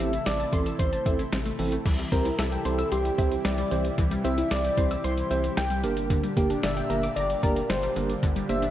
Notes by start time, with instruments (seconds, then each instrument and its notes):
Already playing: analog synth pad C3 E3 A3 E4 A4, soft synth lead E5
0.00 analog synth bass A1, synth pluck C4, tine electric piano C4 E4 G4, closed hi-hat
0.13 synth pluck E4, closed hi-hat
0.26 analog synth bass A1, soft synth lead D5, synth pluck E5, snare, closed hi-hat
0.40 synth pluck A5, closed hi-hat
0.53 analog synth bass A1, tine electric piano C4 E4 A4, synth pluck C6, kick, closed hi-hat
0.66 synth pluck E6, closed hi-hat
0.79 analog synth bass A1, soft synth lead C5, synth pluck C6, kick, closed hi-hat
0.93 synth pluck A5, closed hi-hat
1.06 analog synth bass A1, tine electric piano C4 E4 A4, synth pluck E5, kick, closed hi-hat
1.19 synth pluck E4, closed hi-hat
1.32 analog synth bass A1, synth pluck C4, snare, closed hi-hat
1.46 synth pluck A3, closed hi-hat
1.59 analog synth bass A1, synth pluck E3, tine electric piano C4 E4 A4, open hi-hat
1.72 synth pluck A3, closed hi-hat
1.86 analog synth bass C2, analog synth pad C3 E3 G3 E4 G4, synth pluck E3, kick, closed hi-hat, crash
1.99 synth pluck G3, closed hi-hat
2.12 analog synth bass C2, synth pluck C4, tine electric piano C4 E4 G4 C5, soft synth lead A#4, kick, closed hi-hat
2.25 synth pluck E4, closed hi-hat
2.39 analog synth bass C2, soft synth lead A4, synth pluck E5, snare, closed hi-hat
2.52 synth pluck G5, closed hi-hat
2.65 analog synth bass C2, tine electric piano C4 E4 G4 C5, synth pluck C6, closed hi-hat
2.78 synth pluck E6, closed hi-hat
2.92 analog synth bass C2, soft synth lead G4, synth pluck C6, closed hi-hat
3.05 closed hi-hat
3.18 analog synth bass C2, tine electric piano C4 E4 G4 C5, synth pluck E5, kick, closed hi-hat
3.31 closed hi-hat
3.45 analog synth bass C2, soft synth lead D5, snare, closed hi-hat
3.58 synth pluck G3, closed hi-hat
3.71 analog synth bass C2, synth pluck E3, tine electric piano C4 E4 G4 C5, closed hi-hat
3.84 closed hi-hat
3.98 analog synth bass C2, synth pluck E3, kick, closed hi-hat
4.11 synth pluck G3, closed hi-hat
4.24 analog synth bass C2, tine electric piano C4 E4 G4 C5, synth pluck C4, soft synth lead E5, closed hi-hat
4.38 synth pluck E4, closed hi-hat
4.51 analog synth bass C2, soft synth lead D5, synth pluck E5, snare, closed hi-hat
4.64 synth pluck G5, closed hi-hat
4.77 analog synth bass C2, tine electric piano C4 E4 G4 C5, synth pluck C6, kick, closed hi-hat
4.91 synth pluck E6, closed hi-hat
5.04 analog synth bass C2, soft synth lead C5, synth pluck C6, closed hi-hat
5.18 closed hi-hat
5.31 analog synth bass C2, tine electric piano C4 E4 G4 C5, synth pluck E5, closed hi-hat
5.44 closed hi-hat
5.57 analog synth bass C2, soft synth lead G5, snare, closed hi-hat
5.70 synth pluck G3, closed hi-hat
5.84 analog synth bass G1, analog synth pad A#2 D3 G3 D4, synth pluck D3, tine electric piano A#3 D4 G4 A#4, closed hi-hat
5.97 closed hi-hat
6.10 synth pluck D3, kick, closed hi-hat
6.24 synth pluck G3, closed hi-hat
6.37 analog synth bass G1, tine electric piano A#3 D4 G4 A#4, synth pluck A#3, soft synth lead G4, kick, closed hi-hat
6.50 synth pluck D4, closed hi-hat
6.63 analog synth bass G1, synth pluck D5, soft synth lead E5, snare, closed hi-hat
6.77 synth pluck G5, closed hi-hat
6.90 analog synth bass G1, tine electric piano A#3 D4 G4 A#4, synth pluck A#5, closed hi-hat
7.03 synth pluck D6, closed hi-hat
7.16 analog synth bass G1, soft synth lead D5, synth pluck A#5, closed hi-hat
7.30 closed hi-hat
7.43 analog synth bass G1, tine electric piano A#3 D4 G4 A#4, soft synth lead A#4, synth pluck D5, kick, closed hi-hat
7.56 closed hi-hat
7.69 analog synth bass G1, soft synth lead C5, snare, closed hi-hat
7.83 synth pluck G3, closed hi-hat
7.96 analog synth bass G1, synth pluck D3, tine electric piano A#3 D4 G4 A#4, closed hi-hat
8.09 closed hi-hat
8.23 analog synth bass G1, synth pluck D3, kick, closed hi-hat
8.36 synth pluck G3, closed hi-hat
8.49 analog synth bass G1, synth pluck A#3, tine electric piano A#3 D4 G4 C5, soft synth lead E5, closed hi-hat
8.62 synth pluck D4, closed hi-hat